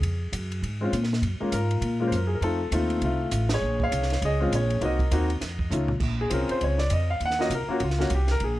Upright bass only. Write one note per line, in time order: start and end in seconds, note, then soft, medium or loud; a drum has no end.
0.01 0.31 F2 medium
0.32 0.62 F#2 medium
0.62 0.92 G#2 medium
0.93 1.21 A#2 medium
1.22 1.39 F#2 medium
1.41 muted upright bass stroke soft
1.52 1.81 G#2 medium
1.81 2.11 A#2 medium
2.12 2.40 F#2 medium
2.41 2.71 F2 medium
2.71 3.01 D#2 medium
3.01 3.31 C2 medium
3.32 3.61 A1 medium
3.62 3.91 A#1 medium
3.92 4.21 C2 medium
4.22 4.51 C#2 medium
4.52 4.81 A#1 medium
4.81 5.10 C2 medium
5.11 5.40 D#2 medium
5.41 5.70 F2 medium
5.70 5.99 C#2 medium
6.00 6.29 A#1 medium
6.31 6.48 C2 medium
6.50 muted upright bass stroke soft
6.61 6.90 C#2 medium
6.91 7.20 F2 medium
7.20 7.49 D#2 medium
7.50 7.67 C2 medium
7.68 muted upright bass stroke soft
7.81 8.09 C#2 medium
8.10 8.39 C2 medium
8.40 8.60 A#1 medium